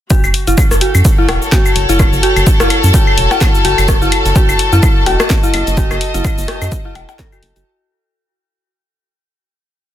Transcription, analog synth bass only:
0.24 0.31 F#1 loud
0.47 0.55 F#1 loud
0.71 0.78 F#1 medium
0.95 1.02 F#2 loud
1.28 1.38 E1 loud
1.76 1.85 F#1 loud
1.89 2.05 F#1 medium
2.13 2.20 F#1 loud
2.36 2.44 F#1 loud
2.60 2.67 F#1 medium
2.84 2.91 F#2 loud
3.18 3.27 E1 loud
3.65 3.75 F#1 loud
3.78 3.94 F#1 medium
4.02 4.09 F#1 loud
4.25 4.33 F#1 loud
4.49 4.56 F#1 medium
4.73 4.80 F#2 loud
5.06 5.16 E1 loud
5.54 5.63 F#1 loud
5.67 5.83 F#1 medium
5.91 5.98 F#1 loud
6.14 6.22 F#1 loud
6.38 6.45 F#1 medium
6.62 6.69 F#2 loud
6.95 7.05 E1 loud
7.43 7.52 F#1 medium
7.56 7.63 F#1 medium

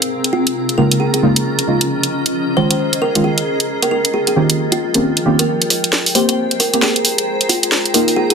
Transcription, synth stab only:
0.78 1.20 C#3 medium
0.78 1.20 G#3 medium
0.78 1.20 A#3 medium
0.78 1.20 D#4 medium
0.78 1.20 F4 medium
1.23 1.35 C#3 medium
1.23 1.35 G#3 medium
1.23 1.35 A#3 medium
1.23 1.35 D#4 medium
1.23 1.35 F4 loud
1.67 1.85 C#3 medium
1.67 1.85 G#3 medium
1.67 1.85 A#3 medium
1.67 1.85 D#4 medium
1.67 1.85 F4 medium
2.57 3.12 D#3 medium
2.57 3.12 G#3 medium
2.57 3.12 C#4 medium
2.57 3.12 F4 medium
3.15 3.23 D#3 medium
3.15 3.23 G#3 medium
3.15 3.24 C#4 medium
3.15 3.23 F4 loud
4.36 4.79 D#3 medium
4.36 4.79 A#3 medium
4.36 4.79 C4 medium
4.36 4.79 C#4 medium
4.36 4.79 F4 medium
4.36 4.79 G4 medium
4.94 5.10 D#3 medium
4.94 5.10 A#3 medium
4.94 5.10 C4 medium
4.94 5.10 C#4 medium
4.94 5.10 F4 medium
4.94 5.10 G4 loud
5.25 5.44 D#3 medium
5.25 5.44 A#3 medium
5.25 5.44 C4 medium
5.25 5.44 C#4 medium
5.25 5.44 F4 medium
5.25 5.44 G4 loud
6.15 6.70 A#3 medium
6.15 6.70 C4 medium
6.15 6.70 G4 loud
6.74 6.82 A#3 medium
6.74 6.82 C4 medium
6.74 6.82 G4 loud
7.94 8.34 A#3 medium
7.94 8.34 D#4 medium
7.94 8.34 F4 medium

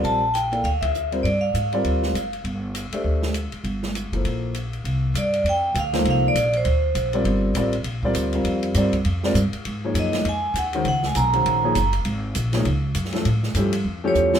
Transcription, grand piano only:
0.00 0.19 G3 medium
0.00 0.19 C4 medium
0.00 0.19 F4 medium
0.00 0.19 A#4 medium
0.00 0.19 D5 medium
0.52 0.63 A#3 medium
0.52 0.63 E4 soft
0.52 0.63 A4 soft
0.52 0.63 D5 soft
0.52 0.63 F5 medium
1.12 1.23 G3 medium
1.12 1.23 C4 medium
1.12 1.23 F4 medium
1.12 1.23 A#4 medium
1.12 1.24 C5 medium
1.73 2.12 G3 medium
1.73 2.13 C4 medium
1.73 2.13 F4 medium
1.73 2.13 A#4 medium
1.73 2.13 D5 medium
2.93 3.32 A3 medium
2.93 3.33 D4 medium
2.93 3.33 G4 soft
2.93 3.33 C5 medium
2.93 3.33 E5 medium
4.13 4.53 F3 soft
4.13 4.53 A#3 soft
4.13 4.53 E4 soft
4.13 4.53 A4 soft
4.13 4.53 C5 medium
5.94 6.33 F3 medium
5.94 6.33 A#3 medium
5.94 6.33 D#4 medium
5.94 6.33 A4 medium
5.94 6.34 C5 medium
7.14 7.53 G3 medium
7.14 7.53 C4 medium
7.14 7.53 F4 medium
7.14 7.54 A#4 medium
7.14 7.54 D5 medium
7.56 7.72 G3 medium
7.56 7.72 C4 medium
7.56 7.72 F4 medium
7.56 7.72 A#4 medium
7.56 7.72 D5 medium
8.04 8.32 G3 medium
8.04 8.32 C4 medium
8.04 8.32 F4 medium
8.04 8.32 A#4 medium
8.04 8.32 D5 medium
8.34 8.73 G3 medium
8.34 8.73 C4 medium
8.34 8.73 F4 medium
8.34 8.74 A#4 medium
8.34 8.74 F5 medium
8.76 8.92 G3 medium
8.76 8.92 C4 medium
8.76 8.92 F4 medium
8.76 8.92 A#4 medium
8.76 8.93 D5 medium
9.24 9.34 G3 medium
9.24 9.35 C4 medium
9.24 9.35 F4 medium
9.24 9.35 A#4 medium
9.24 9.35 D5 medium
9.84 10.23 F3 medium
9.84 10.24 A#3 medium
9.84 10.24 D#4 medium
9.84 10.24 G#4 medium
9.84 10.24 C#5 medium
10.75 10.85 D#3 medium
10.75 10.85 G#3 medium
10.75 10.85 C#4 medium
10.75 10.85 F#4 medium
10.75 10.85 C5 medium
11.33 11.61 D#3 medium
11.33 11.61 G#3 medium
11.33 11.62 C#4 medium
11.33 11.62 F#4 medium
11.33 11.62 C5 medium
11.64 11.74 F3 medium
11.64 11.75 A#3 medium
11.64 11.75 D#4 medium
11.64 11.75 G#4 medium
11.64 11.75 C#5 medium
12.54 12.64 F3 medium
12.54 12.65 A#3 medium
12.54 12.65 D#4 medium
12.54 12.65 G#4 medium
12.54 12.65 C#5 medium
13.13 13.24 F3 medium
13.13 13.24 A3 medium
13.13 13.24 C#4 medium
13.13 13.24 E4 medium
13.13 13.24 A4 medium
13.56 13.72 F3 medium
13.56 13.72 A3 medium
13.56 13.72 C#4 medium
13.56 13.72 E4 medium
13.56 13.73 G4 medium
14.04 14.32 F3 medium
14.04 14.32 A3 medium
14.04 14.32 C#4 medium
14.04 14.32 E4 medium
14.04 14.32 G4 medium
14.34 14.39 B2 medium
14.34 14.39 F3 medium
14.34 14.39 E4 medium
14.34 14.39 A4 medium
14.34 14.39 C5 medium

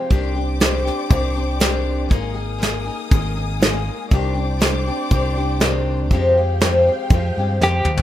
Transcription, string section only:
0.11 2.10 C5 medium
0.11 2.10 D5 medium
0.11 2.09 D6 medium
2.10 4.09 A#4 medium
2.10 4.09 G#5 medium
2.10 4.08 D#6 medium
4.12 6.09 C5 medium
4.12 6.10 D5 medium
4.12 6.10 D6 medium
6.11 8.02 F5 medium
6.11 8.02 G5 medium

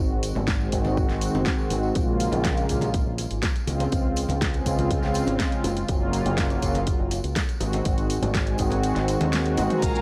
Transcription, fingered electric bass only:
0.00 0.32 G#1 medium
0.36 0.68 G#1 medium
0.73 1.05 G#1 medium
1.10 1.29 G#1 medium
1.34 1.44 F#1 medium
1.70 1.90 G#1 medium
1.96 2.29 A#1 medium
2.32 2.65 A#1 medium
2.70 3.02 A#1 medium
3.06 3.25 A#1 medium
3.31 3.40 G#1 medium
3.67 3.87 C#2 medium
3.92 4.25 C#2 medium
4.29 4.62 C#2 medium
4.66 4.99 C#2 medium
5.03 5.22 C#2 medium
5.27 5.37 G#1 medium
5.64 5.84 F#1 medium
5.89 6.22 F#1 medium
6.26 6.58 F#1 medium
6.63 6.96 F#1 medium
6.99 7.19 F#1 medium
7.24 7.34 C#2 medium
7.61 7.80 G#1 medium
7.86 8.19 G#1 medium
8.22 8.55 G#1 loud
8.60 8.92 G#1 medium
8.96 9.16 G#1 medium
9.21 9.59 D#2 medium
9.58 9.68 G#1 medium
9.83 10.02 A#1 medium

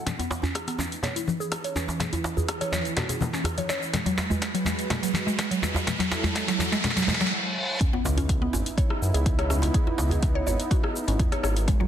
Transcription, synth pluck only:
0.06 0.18 C#4 medium
0.19 0.25 B3 medium
0.43 0.49 C#4 loud
0.68 0.79 B3 medium
0.79 0.90 C#4 medium
1.03 1.15 C#5 medium
1.16 1.26 E4 medium
1.40 1.46 G#4 medium
1.64 1.75 C#5 medium
1.76 1.87 C#4 medium
2.00 2.11 G#4 medium
2.13 2.23 E4 medium
2.37 2.47 G#4 medium
2.61 2.71 C#5 medium
2.73 2.84 C#5 medium
2.97 3.04 F#4 medium
3.09 3.20 G#4 medium
3.34 3.45 C#4 medium
3.58 3.68 C#5 medium
3.69 3.81 C#5 medium
3.93 4.05 G#3 medium
4.06 4.12 F#3 medium
4.30 4.36 G#3 medium
4.54 4.65 F#3 medium
4.66 4.77 G#3 medium
4.90 5.02 G#3 medium
5.03 5.09 F#3 medium
5.27 5.33 G#3 medium
5.51 5.62 F#3 medium
5.63 5.74 G#3 medium
5.87 5.98 G#3 medium
5.99 6.06 F#3 loud
6.24 6.30 G#3 loud
6.35 6.47 G#3 medium
6.48 6.54 F#3 loud
6.72 6.78 G#3 loud
6.84 6.95 G#3 medium
6.96 7.03 F#3 loud
7.08 7.19 G#3 medium
7.21 7.27 F#3 loud
7.81 7.92 C#4 medium
7.93 8.00 B3 loud
8.18 8.24 C#4 loud
8.42 8.53 B3 loud
8.53 8.65 C#4 medium
8.78 8.89 C#5 medium
8.90 9.01 E4 medium
9.14 9.21 G#4 medium
9.39 9.49 C#5 medium
9.50 9.61 C#4 medium
9.74 9.86 G#4 medium
9.87 9.97 E4 medium
10.11 10.22 G#4 medium
10.35 10.46 C#5 loud
10.47 10.58 C#5 medium
10.71 10.78 F#4 medium
10.83 10.95 G#4 medium
11.08 11.19 C#4 medium
11.32 11.42 C#5 medium
11.43 11.55 C#5 medium
11.68 11.79 G#3 medium
11.80 11.86 F#3 loud

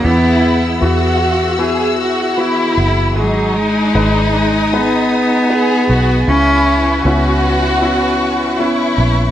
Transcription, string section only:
0.00 6.25 G#4 medium
0.00 3.13 F#5 medium
0.04 3.14 E5 medium
0.04 3.14 E6 medium
3.17 6.26 D#5 medium
3.17 9.31 G#5 medium
3.17 6.26 D#6 medium
6.29 9.31 B4 medium
6.29 9.31 E5 medium
6.29 9.31 C#6 medium

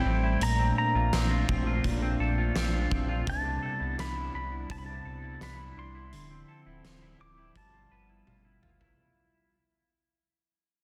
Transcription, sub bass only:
0.05 0.37 A1 loud
0.41 0.73 A#1 loud
0.95 1.11 A#1 medium
1.13 1.44 A#1 loud
1.49 1.80 A#1 medium
1.84 2.16 A#1 loud
2.20 2.51 A#1 loud
2.56 2.87 A#1 loud
2.91 3.23 A#1 loud
3.27 3.59 C2 loud
3.81 3.96 C2 loud
3.99 4.30 C2 loud
4.34 4.66 C2 loud
4.70 5.01 C2 loud
5.06 5.37 C2 medium
5.41 5.73 C2 loud
5.77 6.14 C2 loud
6.13 6.44 D1 loud
6.66 6.82 D1 loud
6.84 7.16 D1 loud
7.20 7.51 D1 medium
7.56 7.87 G1 loud
7.91 8.23 G1 loud
8.27 8.59 G1 loud
8.63 8.94 G1 loud

